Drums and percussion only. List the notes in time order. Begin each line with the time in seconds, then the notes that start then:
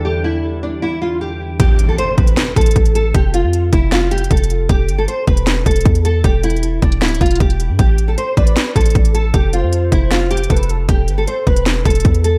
1.60 kick, closed hi-hat
1.79 closed hi-hat
1.98 closed hi-hat
2.18 kick, closed hi-hat
2.27 closed hi-hat
2.37 snare, closed hi-hat
2.56 kick, closed hi-hat
2.61 closed hi-hat
2.66 closed hi-hat
2.71 closed hi-hat
2.76 kick, closed hi-hat
2.85 closed hi-hat
2.95 closed hi-hat
3.15 kick, closed hi-hat
3.34 closed hi-hat
3.53 closed hi-hat
3.73 kick, closed hi-hat
3.92 snare, closed hi-hat
4.11 closed hi-hat
4.18 closed hi-hat
4.24 closed hi-hat
4.31 kick, closed hi-hat
4.37 closed hi-hat
4.44 closed hi-hat
4.50 closed hi-hat
4.69 kick, closed hi-hat
4.89 closed hi-hat
5.08 closed hi-hat
5.27 kick, closed hi-hat
5.37 closed hi-hat
5.47 snare, closed hi-hat
5.66 kick, closed hi-hat
5.71 closed hi-hat
5.76 closed hi-hat
5.81 closed hi-hat
5.85 kick, closed hi-hat
5.95 closed hi-hat
6.05 closed hi-hat
6.24 kick, closed hi-hat
6.43 closed hi-hat, open hi-hat
6.50 closed hi-hat
6.56 closed hi-hat
6.63 closed hi-hat
6.82 kick, closed hi-hat
6.92 closed hi-hat
7.02 snare, closed hi-hat
7.08 closed hi-hat
7.15 closed hi-hat
7.21 kick, closed hi-hat
7.26 closed hi-hat
7.31 closed hi-hat
7.35 closed hi-hat
7.40 kick, closed hi-hat
7.50 closed hi-hat
7.60 closed hi-hat
7.79 kick, closed hi-hat
7.98 closed hi-hat
8.18 closed hi-hat
8.37 kick, closed hi-hat
8.47 closed hi-hat
8.56 snare, closed hi-hat
8.76 kick, closed hi-hat
8.81 closed hi-hat
8.86 closed hi-hat
8.90 closed hi-hat
8.95 kick, closed hi-hat
9.05 closed hi-hat
9.15 closed hi-hat
9.34 kick, closed hi-hat
9.53 closed hi-hat
9.73 closed hi-hat
9.92 kick, closed hi-hat
10.11 snare, closed hi-hat
10.31 closed hi-hat
10.37 closed hi-hat
10.44 closed hi-hat
10.50 kick, closed hi-hat
10.56 closed hi-hat
10.63 closed hi-hat
10.69 closed hi-hat
10.89 kick, closed hi-hat
11.08 closed hi-hat
11.27 closed hi-hat
11.47 kick, closed hi-hat
11.56 closed hi-hat
11.66 snare, closed hi-hat
11.85 kick, closed hi-hat
11.90 closed hi-hat
11.95 closed hi-hat
12.00 closed hi-hat
12.05 kick, closed hi-hat
12.15 closed hi-hat
12.24 closed hi-hat